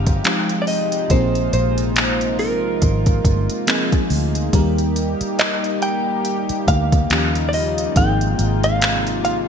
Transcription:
0.00 0.20 G1 loud
0.00 4.49 C3 medium
0.00 1.07 F3 medium
0.00 4.49 G#3 medium
0.00 4.49 D#4 medium
0.00 1.07 G4 medium
0.00 0.61 F5 loud
0.07 kick medium
0.07 closed hi-hat medium
0.24 1.00 F3 medium
0.24 1.01 G#3 medium
0.24 1.01 C4 medium
0.24 1.01 D#4 medium
0.24 1.01 G4 medium
0.24 clap loud
0.24 closed hi-hat medium
0.49 closed hi-hat medium
0.62 0.67 D5 medium
0.67 1.12 D#5 loud
0.67 open hi-hat medium
0.92 closed hi-hat medium
1.10 1.48 A#1 loud
1.10 2.61 F3 medium
1.10 9.48 A#3 medium
1.10 2.62 A#3 medium
1.10 2.62 C4 medium
1.10 2.62 D#4 medium
1.10 4.50 F4 medium
1.10 2.62 G#4 medium
1.10 1.51 C5 medium
1.10 kick loud
1.10 closed hi-hat medium
1.35 closed hi-hat soft
1.53 2.78 A#1 medium
1.53 2.39 C5 medium
1.53 closed hi-hat medium
1.78 closed hi-hat medium
1.96 clap loud
1.96 closed hi-hat medium
2.21 closed hi-hat soft
2.39 4.07 A#4 medium
2.39 open hi-hat soft
2.82 3.20 G#1 loud
2.82 kick medium
2.82 closed hi-hat medium
3.06 kick medium
3.06 closed hi-hat soft
3.25 3.47 G1 medium
3.25 kick medium
3.25 closed hi-hat medium
3.50 closed hi-hat medium
3.67 4.43 F3 medium
3.67 4.43 A#3 medium
3.67 4.44 C4 medium
3.67 4.44 D#4 medium
3.67 4.44 G#4 loud
3.67 3.91 D#5 medium
3.67 clap loud
3.67 closed hi-hat medium
3.92 4.50 G#5 medium
3.92 kick loud
3.92 closed hi-hat medium
4.10 4.48 D2 loud
4.10 open hi-hat medium
4.35 closed hi-hat medium
4.53 5.13 D#2 loud
4.53 6.04 G3 medium
4.53 7.08 G3 medium
4.53 6.04 A#3 medium
4.53 7.08 D#4 medium
4.53 6.05 D#4 medium
4.53 7.08 G4 medium
4.53 6.05 A#4 loud
4.53 kick loud
4.53 closed hi-hat medium
4.78 closed hi-hat soft
4.96 closed hi-hat medium
5.21 muted fingered electric bass stroke medium
5.21 closed hi-hat medium
5.39 5.82 D#5 loud
5.39 clap loud
5.39 closed hi-hat medium
5.64 closed hi-hat soft
5.82 6.68 G5 loud
5.82 closed hi-hat medium
6.25 closed hi-hat medium
6.49 muted fingered electric bass stroke soft
6.49 closed hi-hat soft
6.68 7.06 D2 loud
6.68 7.44 F5 loud
6.68 kick loud
6.68 closed hi-hat medium
6.92 kick loud
6.92 closed hi-hat medium
7.10 7.86 D#2 loud
7.10 7.95 C#3 medium
7.10 7.86 F3 medium
7.10 7.95 G3 medium
7.10 7.86 A#3 medium
7.10 7.87 C#4 medium
7.10 7.95 D#4 medium
7.10 7.87 D#4 medium
7.10 7.95 F4 medium
7.10 7.87 G4 medium
7.10 clap loud
7.10 closed hi-hat medium
7.35 closed hi-hat medium
7.49 7.54 D5 medium
7.53 7.97 D#5 loud
7.53 open hi-hat medium
7.78 closed hi-hat medium
7.96 8.34 G#1 loud
7.96 9.48 C3 medium
7.96 9.47 F3 medium
7.96 9.48 G#3 medium
7.96 9.47 A#3 medium
7.96 9.48 C4 medium
7.96 9.48 D#4 medium
7.96 9.48 F4 medium
7.96 9.48 G#4 medium
7.96 8.64 G5 loud
7.96 kick loud
7.96 closed hi-hat medium
8.21 closed hi-hat soft
8.39 9.48 G#1 loud
8.39 closed hi-hat medium
8.64 9.23 F5 loud
8.64 closed hi-hat medium
8.82 clap loud
8.82 closed hi-hat medium
9.07 closed hi-hat soft
9.25 9.36 F5 loud
9.25 closed hi-hat medium

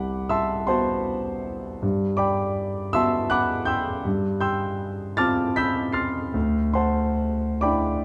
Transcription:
0.00 1.79 C2 soft
0.00 0.27 F#5 medium
0.00 0.27 B5 medium
0.00 0.27 D6 medium
0.00 0.30 F#6 medium
0.29 0.66 E5 medium
0.29 0.66 A5 medium
0.29 0.65 C6 medium
0.29 0.68 E6 medium
0.67 1.79 B3 soft
0.67 1.79 F#4 soft
0.67 1.78 C5 medium
0.67 1.78 F#5 medium
0.67 1.78 A5 medium
0.67 1.81 C6 medium
1.82 4.01 G2 medium
2.17 2.90 D5 medium
2.17 2.90 G5 medium
2.17 2.90 B5 medium
2.17 2.93 D6 medium
2.93 4.01 B3 soft
2.93 4.01 F#4 soft
2.93 3.29 E5 medium
2.93 3.29 A5 medium
2.93 3.29 C6 medium
2.93 3.31 E6 loud
3.30 3.65 F#5 medium
3.30 3.65 B5 medium
3.30 3.65 D6 medium
3.30 3.67 F#6 medium
3.65 4.01 G5 medium
3.65 4.02 C6 medium
3.65 4.02 E6 medium
3.65 4.04 G6 medium
4.05 6.31 G2 medium
4.41 5.14 G5 medium
4.41 5.14 C6 medium
4.41 5.14 E6 medium
4.41 5.18 G6 medium
5.17 6.30 C4 soft
5.17 6.31 F4 soft
5.17 5.54 A5 medium
5.17 5.54 D6 medium
5.17 5.54 F6 medium
5.17 5.56 A6 medium
5.56 5.92 B5 medium
5.56 5.93 E6 medium
5.56 5.92 G6 medium
5.56 5.95 B6 medium
5.92 6.31 C6 medium
5.92 6.31 F6 medium
5.92 6.31 A6 medium
5.92 6.33 C7 medium
6.34 8.05 D2 medium
6.73 7.59 C5 medium
6.73 7.59 F#5 medium
6.73 7.59 A5 soft
6.73 7.62 C6 medium
7.61 8.05 D4 soft
7.61 8.05 E4 soft
7.61 8.04 D5 medium
7.61 8.04 G5 medium
7.61 8.04 B5 medium
7.61 8.05 D6 medium

